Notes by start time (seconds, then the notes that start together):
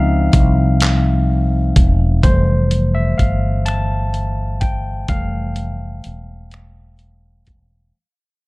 Already playing: C#2 F3 C4 D#4 E5 F5
0.33 C2, kick, closed hi-hat
0.81 clap, closed hi-hat
1.76 E1, kick, closed hi-hat
2.23 F1 E3 G3 A3 C5, kick, closed hi-hat
2.71 closed hi-hat
2.95 E5
3.18 G1 F5, kick, closed hi-hat
3.66 A5, finger snap, closed hi-hat
4.14 closed hi-hat
4.61 G5, kick, closed hi-hat
5.08 F1 E3 G3 A3 F5, kick, closed hi-hat
5.56 closed hi-hat
6.04 E1, closed hi-hat
6.51 finger snap, closed hi-hat
6.99 closed hi-hat
7.47 E1, kick, closed hi-hat